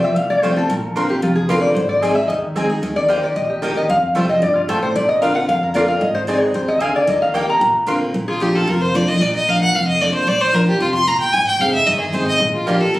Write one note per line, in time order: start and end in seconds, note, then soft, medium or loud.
0.00 0.14 F2 medium
0.00 0.16 F4 medium
0.00 0.17 E5 medium
0.05 0.17 C4 medium
0.16 0.52 C2 medium
0.16 0.67 A2 medium
0.16 0.30 F5 loud
0.30 0.43 D5 loud
0.42 0.56 F3 medium
0.42 0.57 G3 medium
0.42 0.52 A3 medium
0.42 0.57 C4 medium
0.42 0.52 F4 medium
0.42 0.55 F4 medium
0.42 0.56 C5 medium
0.42 0.52 C5 loud
0.42 0.53 G5 loud
0.56 0.70 C4 medium
0.56 0.69 F4 medium
0.56 0.70 A4 medium
0.70 1.06 A#1 loud
0.70 1.20 A#2 loud
0.70 1.10 A#4 medium
0.96 1.09 D3 medium
0.96 1.10 A#3 medium
0.96 1.10 C4 medium
0.96 1.05 D4 medium
0.96 1.08 F4 medium
0.96 1.05 A#4 medium
0.96 1.06 F5 loud
0.96 1.06 C6 loud
1.09 1.23 C4 soft
1.09 1.22 F4 medium
1.09 1.22 G4 medium
1.22 1.59 F1 medium
1.22 1.73 F2 medium
1.22 1.36 F4 medium
1.35 1.49 G#4 medium
1.49 1.75 D3 medium
1.49 1.75 A#3 medium
1.49 1.76 C4 medium
1.49 1.58 D4 medium
1.49 1.76 F4 loud
1.49 1.59 A#4 medium
1.49 1.61 B4 medium
1.49 1.59 F5 medium
1.49 1.59 C6 loud
1.61 1.75 D5 loud
1.74 2.11 G#1 loud
1.74 2.27 G#2 medium
1.74 1.88 C5 medium
1.89 2.02 D5 medium
2.02 2.16 G#3 medium
2.02 2.12 C4 medium
2.02 2.16 C4 medium
2.02 2.17 D#4 medium
2.02 2.12 G#4 loud
2.02 2.16 G#4 loud
2.02 2.15 D#5 loud
2.02 2.12 D#5 medium
2.02 2.12 G#5 loud
2.15 2.30 D#4 medium
2.15 2.29 G#4 medium
2.15 2.27 E5 loud
2.28 2.65 D#2 medium
2.28 2.80 D#3 medium
2.28 2.36 D#5 medium
2.56 2.69 G#3 medium
2.56 2.65 C4 medium
2.56 2.70 C4 medium
2.56 2.70 D#4 medium
2.56 2.65 G#4 loud
2.56 2.68 G#4 medium
2.56 2.65 D#5 loud
2.56 2.66 G#5 loud
2.70 2.84 D#4 medium
2.70 2.82 G#4 medium
2.82 3.18 D#2 loud
2.82 3.07 D#3 medium
2.96 3.09 D5 loud
3.09 3.22 D#3 medium
3.09 3.18 A#3 loud
3.09 3.23 A#3 medium
3.09 3.23 D#4 medium
3.09 3.18 G4 loud
3.09 3.22 G4 medium
3.09 3.23 C5 medium
3.09 3.19 D#5 medium
3.09 3.19 G5 loud
3.23 3.37 D#4 soft
3.23 3.36 G4 medium
3.23 3.36 D5 loud
3.36 3.72 A#1 medium
3.36 3.87 A#2 medium
3.36 3.49 D#5 loud
3.50 3.62 G4 medium
3.62 3.75 D#3 medium
3.62 3.72 A#3 medium
3.62 3.76 A#3 medium
3.62 3.76 D#4 medium
3.62 3.72 G4 loud
3.62 3.75 G4 loud
3.62 3.76 A#4 medium
3.62 3.72 D#5 loud
3.62 3.72 G5 loud
3.76 3.90 D#4 soft
3.76 3.89 G4 medium
3.76 3.89 D#5 loud
3.89 4.07 F2 loud
3.89 4.40 F2 loud
3.89 4.27 F5 loud
4.15 4.38 F1 medium
4.15 4.28 F3 medium
4.15 4.29 G3 medium
4.15 4.25 A3 medium
4.15 4.29 C4 medium
4.15 4.25 F4 medium
4.15 4.27 F4 medium
4.15 4.25 C5 loud
4.15 4.25 G5 loud
4.28 4.43 C4 medium
4.28 4.41 F4 medium
4.28 4.42 D#5 loud
4.42 4.65 G1 medium
4.42 4.67 G2 medium
4.42 4.56 D5 medium
4.55 4.68 F4 medium
4.68 4.91 A1 medium
4.68 4.94 A2 loud
4.68 4.78 A3 medium
4.68 4.78 F4 loud
4.68 4.82 A4 medium
4.68 4.78 C5 loud
4.68 4.78 G5 loud
4.82 4.95 C5 loud
4.95 5.31 A#1 medium
4.95 5.46 A#2 medium
4.95 5.08 D5 medium
5.09 5.21 D#5 loud
5.22 5.47 D3 medium
5.22 5.48 A#3 medium
5.22 5.48 C4 medium
5.22 5.31 D4 loud
5.22 5.48 F4 loud
5.22 5.31 A#4 medium
5.22 5.35 F5 medium
5.22 5.32 F5 loud
5.22 5.32 C6 medium
5.35 5.48 F#5 loud
5.48 5.84 F2 medium
5.48 5.99 F2 medium
5.48 5.62 F5 loud
5.63 5.75 A#4 medium
5.74 5.88 D3 medium
5.74 5.88 A#3 medium
5.74 5.89 C4 medium
5.74 5.84 D4 medium
5.74 5.87 F4 medium
5.74 5.85 A#4 medium
5.74 5.88 D5 loud
5.74 5.85 F5 loud
5.74 5.85 C6 loud
5.88 6.02 C4 soft
5.88 6.01 F4 medium
5.88 6.01 F5 loud
6.01 6.37 G#1 loud
6.01 6.52 G#2 loud
6.01 6.15 D#5 medium
6.15 6.23 C5 loud
6.27 6.53 G#3 medium
6.27 6.54 C4 medium
6.27 6.38 C4 medium
6.27 6.54 D#4 medium
6.27 6.38 G#4 medium
6.27 6.54 G#4 loud
6.27 6.42 D5 medium
6.27 6.38 D#5 loud
6.27 6.38 G#5 loud
6.42 6.55 B4 medium
6.54 6.91 D#2 medium
6.54 6.80 C3 medium
6.54 6.68 C5 loud
6.68 6.82 D#5 loud
6.80 7.06 D3 medium
6.80 6.90 C4 medium
6.80 6.91 G#4 loud
6.80 6.91 D#5 loud
6.80 6.95 F5 loud
6.80 6.91 G#5 loud
6.96 7.08 D5 loud
7.07 7.44 D#2 loud
7.07 7.33 D#3 loud
7.07 7.22 D#5 medium
7.22 7.35 F5 loud
7.34 7.60 D#3 medium
7.34 7.44 A#3 medium
7.34 7.60 A#3 medium
7.34 7.61 D#4 medium
7.34 7.44 G4 medium
7.34 7.61 G4 medium
7.34 7.44 D#5 medium
7.34 7.44 G5 loud
7.34 7.48 G5 loud
7.49 8.05 A#5 loud
7.61 7.97 A#1 medium
7.61 8.12 A#2 loud
7.87 8.13 D3 medium
7.87 8.13 A#3 loud
7.87 8.14 C4 loud
7.87 7.97 D4 medium
7.87 8.14 F4 loud
7.87 7.97 A#4 medium
7.87 7.97 F5 loud
7.87 7.97 C6 loud
8.14 8.50 A#1 medium
8.14 8.65 A#2 medium
8.28 8.43 F4 medium
8.28 8.41 G#4 loud
8.40 8.66 F3 medium
8.40 8.67 A#3 medium
8.40 8.67 D4 medium
8.40 8.67 F4 medium
8.40 8.55 G4 medium
8.40 8.57 G4 medium
8.55 8.60 F4 medium
8.55 8.70 A4 medium
8.67 9.03 F1 medium
8.67 9.18 F2 medium
8.67 8.86 F4 medium
8.67 8.82 A#4 medium
8.81 8.97 C5 medium
8.94 9.07 F3 medium
8.94 9.08 A#3 loud
8.94 9.08 D4 medium
8.94 9.06 F4 medium
8.94 9.10 D5 medium
9.07 9.21 D4 soft
9.07 9.20 F4 medium
9.07 9.23 D#5 loud
9.20 9.56 A#1 loud
9.20 9.72 A#2 loud
9.20 9.34 D5 medium
9.35 9.50 D#5 medium
9.48 9.73 F3 medium
9.48 9.73 A#3 medium
9.48 9.74 D4 medium
9.48 9.74 F4 medium
9.48 9.60 F5 medium
9.61 9.76 F#5 loud
9.74 10.10 F1 medium
9.74 10.25 F2 medium
9.74 9.87 F5 medium
9.87 10.02 D#5 loud
10.00 10.26 F3 medium
10.00 10.26 A#3 medium
10.00 10.27 D4 medium
10.00 10.27 F4 medium
10.00 10.14 D5 medium
10.14 10.29 C5 medium
10.27 10.63 A#1 medium
10.27 10.78 A#2 medium
10.27 10.42 D5 medium
10.41 10.56 C5 loud
10.53 10.67 F3 medium
10.53 10.67 A#3 medium
10.53 10.68 D4 medium
10.53 10.66 F4 loud
10.53 10.67 A#4 medium
10.67 10.81 D4 soft
10.67 10.80 F4 medium
10.67 10.80 G4 medium
10.80 11.16 F1 medium
10.80 11.06 C3 medium
10.80 10.89 F4 medium
10.94 11.09 C6 loud
11.07 11.33 A#2 medium
11.07 11.20 A#5 loud
11.20 11.34 G5 loud
11.32 11.51 G#1 medium
11.32 11.85 G#2 loud
11.32 11.46 G#5 loud
11.47 11.62 G5 loud
11.59 11.83 F1 medium
11.59 11.73 G#3 medium
11.59 11.74 C4 medium
11.59 11.74 D#4 medium
11.59 11.71 G#4 medium
11.59 11.73 F5 medium
11.72 11.87 D#4 medium
11.72 11.86 G#4 medium
11.72 11.88 E5 loud
11.86 12.10 G1 medium
11.86 12.38 D#3 medium
11.86 11.99 D#5 loud
12.00 12.15 G#4 medium
12.13 12.36 G#1 medium
12.13 12.39 G#3 medium
12.13 12.39 C4 medium
12.13 12.39 D#4 medium
12.13 12.40 G#4 medium
12.13 12.26 C5 medium
12.27 12.39 D#5 loud
12.40 12.76 A#1 medium
12.40 12.91 A#2 medium
12.54 12.68 F4 medium
12.67 12.80 F3 medium
12.67 12.76 A#3 medium
12.67 12.81 A#3 medium
12.67 12.81 D4 medium
12.67 12.76 F4 medium
12.67 12.79 F4 loud
12.67 12.82 G4 medium
12.67 12.76 D5 loud
12.67 12.77 A#5 medium
12.81 12.94 D4 soft
12.81 12.93 F4 medium
12.81 12.96 A4 medium
12.94 12.99 F1 medium
12.94 12.99 F2 medium
12.94 12.99 A#4 medium